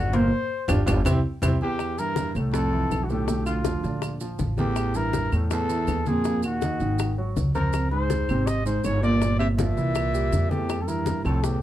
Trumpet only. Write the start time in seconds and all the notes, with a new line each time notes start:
Already playing: F#4
0.15 C5
1.63 G4
1.99 A#4
2.54 A4
3.04 F#4
3.09 G4
3.46 F4
4.59 G4
4.96 A#4
5.52 A4
6.07 G#4
6.44 F#4
7.55 A#4
7.92 C5
8.47 D#5
8.66 C5
8.85 C#5
9.04 D5
9.39 E5
9.58 E5
10.50 G4
10.81 A4
10.87 A#4
11.25 A4
11.43 G4